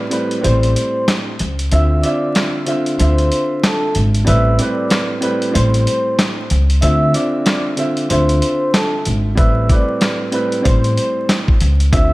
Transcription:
0.10 0.39 A2 medium
0.10 0.40 G3 medium
0.10 0.41 C4 medium
0.10 0.42 B4 loud
0.10 closed hi-hat medium
0.31 closed hi-hat soft
0.41 0.73 A1 loud
0.41 1.32 A2 medium
0.41 1.33 G3 medium
0.41 1.33 C4 medium
0.41 0.72 C5 medium
0.41 1.33 C5 loud
0.41 0.73 C6 medium
0.41 closed hi-hat loud
0.63 closed hi-hat medium
0.76 1.05 C5 medium
0.76 1.05 C6 medium
0.76 closed hi-hat medium
1.08 snare loud
1.08 clap medium
1.08 closed hi-hat medium
1.39 1.69 C#2 medium
1.39 closed hi-hat medium
1.59 closed hi-hat medium
1.71 2.01 D2 loud
1.71 2.01 D3 medium
1.71 2.02 C4 medium
1.71 2.02 F4 medium
1.71 2.00 E5 loud
1.71 2.02 E5 loud
1.71 2.01 E6 medium
1.71 closed hi-hat medium
2.02 2.63 D3 medium
2.02 2.63 C4 medium
2.02 2.64 F4 medium
2.02 2.51 D5 medium
2.02 2.64 E5 loud
2.02 2.51 D6 medium
2.02 closed hi-hat medium
2.35 snare loud
2.35 clap medium
2.35 closed hi-hat medium
2.66 2.96 D3 loud
2.66 2.97 C4 medium
2.66 2.97 F4 medium
2.66 2.97 E5 loud
2.66 closed hi-hat medium
2.86 closed hi-hat soft
2.98 3.29 D2 loud
2.98 4.18 D3 loud
2.98 4.19 C4 medium
2.98 4.19 F4 medium
2.98 3.27 C5 medium
2.98 4.20 E5 loud
2.98 3.28 C6 medium
2.98 closed hi-hat loud
3.18 closed hi-hat soft
3.31 3.60 C5 medium
3.31 3.60 C6 medium
3.31 closed hi-hat medium
3.63 3.92 A4 medium
3.63 3.92 A5 medium
3.63 snare loud
3.63 clap medium
3.63 closed hi-hat medium
3.95 4.24 G#1 medium
3.95 closed hi-hat medium
4.14 closed hi-hat medium
4.24 4.56 A1 loud
4.24 4.56 A2 medium
4.24 4.56 G3 medium
4.24 4.56 C4 medium
4.24 4.57 B4 loud
4.24 4.56 E5 loud
4.24 4.56 E6 medium
4.24 closed hi-hat medium
4.58 5.19 A2 medium
4.58 5.19 G3 medium
4.58 5.20 C4 medium
4.58 5.20 B4 loud
4.58 5.07 D5 medium
4.58 5.07 D6 medium
4.58 closed hi-hat medium
4.90 snare loud
4.90 clap medium
4.90 closed hi-hat medium
5.21 5.50 A2 medium
5.21 5.51 G3 medium
5.21 5.51 C4 medium
5.21 5.53 B4 loud
5.21 closed hi-hat medium
5.42 closed hi-hat soft
5.52 5.84 A1 loud
5.52 6.43 A2 medium
5.52 6.43 G3 medium
5.52 6.43 C4 medium
5.52 5.83 C5 medium
5.52 6.44 C5 loud
5.52 5.83 C6 medium
5.52 closed hi-hat loud
5.74 closed hi-hat medium
5.87 6.16 C5 medium
5.87 6.16 C6 medium
5.87 closed hi-hat medium
6.19 snare loud
6.19 clap medium
6.19 closed hi-hat medium
6.50 6.80 C#2 medium
6.50 closed hi-hat medium
6.70 closed hi-hat medium
6.81 7.12 D2 loud
6.81 7.12 D3 medium
6.81 7.12 C4 medium
6.81 7.13 F4 medium
6.81 7.10 E5 loud
6.81 7.13 E5 loud
6.81 7.11 E6 medium
6.81 closed hi-hat medium
7.14 7.74 D3 loud
7.14 7.74 C4 medium
7.14 7.74 F4 medium
7.14 7.62 D5 medium
7.14 7.75 E5 loud
7.14 7.63 D6 medium
7.14 closed hi-hat medium
7.46 snare loud
7.46 clap medium
7.46 closed hi-hat medium
7.76 8.07 D3 loud
7.76 8.07 C4 medium
7.76 8.08 F4 medium
7.76 8.08 E5 loud
7.76 closed hi-hat medium
7.97 closed hi-hat soft
8.09 8.39 D2 loud
8.09 9.29 D3 loud
8.09 9.30 C4 medium
8.09 9.30 F4 medium
8.09 8.38 C5 medium
8.09 9.30 E5 loud
8.09 8.39 C6 medium
8.09 closed hi-hat loud
8.29 closed hi-hat medium
8.41 8.70 C5 medium
8.41 8.70 C6 medium
8.41 closed hi-hat medium
8.74 9.02 A4 medium
8.74 9.03 A5 medium
8.74 snare loud
8.74 clap loud
8.74 closed hi-hat medium
9.05 9.35 G#1 medium
9.05 closed hi-hat medium
9.35 9.67 A1 loud
9.35 9.66 A2 medium
9.35 9.67 G3 medium
9.35 9.67 C4 medium
9.35 9.67 B4 loud
9.35 9.66 E5 loud
9.35 9.67 E6 medium
9.35 kick loud
9.35 closed hi-hat medium
9.69 10.29 A2 medium
9.69 10.30 G3 medium
9.69 10.30 C4 medium
9.69 10.31 B4 loud
9.69 10.17 D5 medium
9.69 10.18 D6 medium
9.69 kick medium
9.69 closed hi-hat medium
10.01 snare loud
10.01 clap medium
10.01 closed hi-hat medium
10.31 10.61 A2 medium
10.31 10.61 G3 medium
10.31 10.62 C4 medium
10.31 10.63 B4 loud
10.31 closed hi-hat medium
10.52 closed hi-hat soft
10.62 10.95 A1 loud
10.62 11.53 A2 medium
10.62 11.54 G3 medium
10.62 11.54 C4 medium
10.62 10.93 C5 medium
10.62 11.54 C5 loud
10.62 10.94 C6 medium
10.62 kick medium
10.62 closed hi-hat loud
10.84 closed hi-hat medium
10.97 11.26 C5 medium
10.97 11.26 C6 medium
10.97 closed hi-hat medium
11.29 snare loud
11.29 clap medium
11.29 closed hi-hat medium
11.48 kick medium
11.61 11.90 C#2 medium
11.61 closed hi-hat medium
11.80 closed hi-hat medium
11.92 12.13 D2 loud
11.92 12.13 D3 loud
11.92 12.13 C4 medium
11.92 12.13 F4 medium
11.92 12.13 E5 loud
11.92 12.13 E6 medium
11.92 kick loud
11.92 closed hi-hat medium

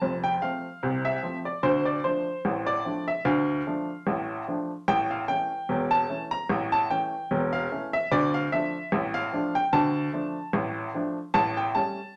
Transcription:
0.00 0.36 F1 medium
0.00 0.36 F2 medium
0.00 0.15 A5 loud
0.24 0.42 G5 loud
0.42 0.64 F3 soft
0.42 0.65 A3 soft
0.42 0.65 C4 medium
0.42 0.92 F5 medium
0.83 1.17 C2 medium
0.83 1.17 C3 medium
1.05 1.37 E5 loud
1.23 1.45 F3 medium
1.23 1.46 A3 soft
1.23 1.46 C4 medium
1.45 1.64 D5 medium
1.63 1.98 D2 medium
1.63 1.98 D3 medium
1.63 1.85 C5 loud
1.85 2.04 D5 medium
2.04 2.27 F3 medium
2.04 2.27 A3 soft
2.04 2.27 D4 medium
2.04 2.64 C5 medium
2.45 2.79 A1 medium
2.45 2.79 A2 medium
2.67 3.05 D5 loud
2.85 3.07 F3 soft
2.85 3.08 A3 medium
2.85 3.08 D4 medium
3.08 3.26 E5 loud
3.25 3.60 D2 loud
3.25 3.60 D3 medium
3.25 4.43 F5 loud
3.67 3.89 F3 medium
3.67 3.89 A3 medium
3.67 3.89 D4 medium
4.07 4.41 A1 medium
4.07 4.41 A2 medium
4.48 4.70 F3 medium
4.48 4.70 A3 medium
4.48 4.70 D4 medium
4.88 5.22 A1 medium
4.88 5.22 A2 loud
4.88 5.10 G5 loud
5.11 5.29 F5 medium
5.28 5.50 E3 soft
5.28 5.51 A3 soft
5.28 5.51 C#4 medium
5.28 5.88 G5 loud
5.69 6.03 E1 medium
5.69 6.03 E2 medium
5.91 6.23 A5 loud
6.10 6.32 E3 soft
6.10 6.32 A3 medium
6.10 6.32 C#4 medium
6.31 6.64 A#5 loud
6.49 6.84 A1 medium
6.49 6.84 A2 medium
6.72 6.90 A5 loud
6.90 7.13 E3 medium
6.90 7.13 A3 medium
6.90 7.13 C#4 medium
6.90 7.40 G5 loud
7.31 7.65 E1 loud
7.31 7.65 E2 medium
7.53 7.85 F5 loud
7.71 7.93 E3 medium
7.71 7.94 A3 medium
7.71 7.94 C#4 medium
7.93 8.12 E5 loud
8.12 8.46 D2 medium
8.12 8.46 D3 medium
8.12 8.33 D5 loud
8.34 8.52 F5 loud
8.52 8.75 F3 medium
8.52 8.75 A3 medium
8.52 8.75 D4 medium
8.52 9.02 E5 loud
8.92 9.26 A1 loud
8.92 9.27 A2 medium
9.14 9.52 F5 loud
9.33 9.55 F3 medium
9.33 9.55 A3 medium
9.33 9.56 D4 medium
9.55 9.73 G5 loud
9.73 10.07 D2 medium
9.73 10.07 D3 loud
9.73 10.90 A5 loud
10.13 10.35 F3 medium
10.13 10.36 A3 medium
10.13 10.36 D4 medium
10.53 10.88 A1 medium
10.53 10.88 A2 medium
10.94 11.16 F3 medium
10.94 11.17 A3 medium
10.94 11.17 D4 medium
11.34 11.69 A1 medium
11.34 11.69 A2 loud
11.34 11.56 A5 loud
11.57 11.75 G5 loud
11.75 11.97 G3 medium
11.75 11.97 A3 medium
11.75 11.98 C#4 medium
11.75 12.16 A5 loud

